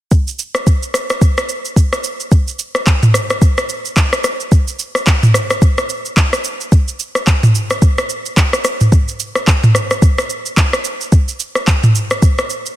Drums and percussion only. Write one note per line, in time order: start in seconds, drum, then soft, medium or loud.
0.11 kick loud
0.11 shaker medium
0.27 shaker medium
0.39 shaker medium
0.55 cross-stick medium
0.55 shaker soft
0.67 kick medium
0.67 shaker medium
0.83 shaker medium
0.94 cross-stick medium
0.94 shaker loud
1.10 cross-stick loud
1.10 shaker medium
1.21 kick loud
1.21 shaker medium
1.38 cross-stick loud
1.38 shaker medium
1.49 shaker medium
1.65 shaker medium
1.76 kick medium
1.76 shaker medium
1.93 cross-stick loud
1.93 shaker medium
2.04 shaker loud
2.20 shaker soft
2.32 kick loud
2.32 shaker medium
2.48 shaker medium
2.59 shaker medium
2.75 cross-stick medium
2.75 shaker soft
2.87 kick loud
2.87 clap medium
2.87 shaker medium
3.03 mid tom medium
3.03 shaker medium
3.14 cross-stick medium
3.14 shaker loud
3.30 cross-stick loud
3.30 shaker medium
3.42 kick loud
3.42 shaker medium
3.58 cross-stick loud
3.58 shaker medium
3.69 shaker medium
3.85 shaker medium
3.97 kick medium
3.97 clap medium
3.97 shaker medium
4.13 cross-stick loud
4.13 shaker medium
4.24 cross-stick medium
4.24 shaker loud
4.40 shaker soft
4.52 kick loud
4.52 shaker medium
4.68 shaker medium
4.79 shaker medium
4.95 cross-stick medium
4.95 shaker soft
5.07 kick loud
5.07 clap medium
5.07 shaker medium
5.23 mid tom medium
5.23 shaker medium
5.34 cross-stick medium
5.34 shaker loud
5.50 cross-stick loud
5.50 shaker medium
5.62 kick loud
5.62 shaker medium
5.78 cross-stick loud
5.78 shaker soft
5.89 shaker medium
6.05 shaker medium
6.17 kick medium
6.17 clap medium
6.17 shaker medium
6.33 cross-stick medium
6.33 shaker medium
6.44 shaker loud
6.61 shaker soft
6.72 kick loud
6.72 shaker medium
6.88 shaker medium
6.99 shaker medium
7.15 cross-stick medium
7.15 shaker soft
7.27 kick loud
7.27 clap medium
7.27 shaker medium
7.43 mid tom medium
7.43 shaker medium
7.55 shaker loud
7.70 cross-stick loud
7.70 shaker medium
7.82 kick loud
7.82 shaker medium
7.98 cross-stick loud
7.98 shaker soft
8.09 shaker medium
8.26 shaker medium
8.37 kick medium
8.37 clap medium
8.37 shaker medium
8.53 cross-stick medium
8.53 shaker medium
8.64 cross-stick medium
8.64 shaker loud
8.81 mid tom medium
8.81 shaker soft
8.92 kick loud
8.92 shaker medium
9.08 shaker medium
9.20 shaker medium
9.35 cross-stick medium
9.35 shaker medium
9.47 kick loud
9.47 clap medium
9.47 shaker medium
9.64 mid tom medium
9.64 shaker soft
9.75 cross-stick medium
9.75 shaker loud
9.91 cross-stick medium
9.91 shaker medium
10.02 kick loud
10.02 shaker medium
10.18 cross-stick loud
10.18 shaker medium
10.30 shaker medium
10.46 shaker medium
10.57 kick medium
10.57 clap medium
10.57 shaker medium
10.73 cross-stick loud
10.73 shaker medium
10.85 shaker loud
11.01 shaker soft
11.12 kick loud
11.12 shaker medium
11.28 shaker medium
11.40 shaker medium
11.55 cross-stick medium
11.55 shaker soft
11.67 kick loud
11.67 clap medium
11.67 shaker medium
11.83 mid tom medium
11.83 shaker medium
11.95 shaker loud
12.11 cross-stick loud
12.11 shaker medium
12.22 kick loud
12.22 shaker medium
12.39 cross-stick loud
12.39 shaker medium
12.50 shaker medium
12.66 shaker medium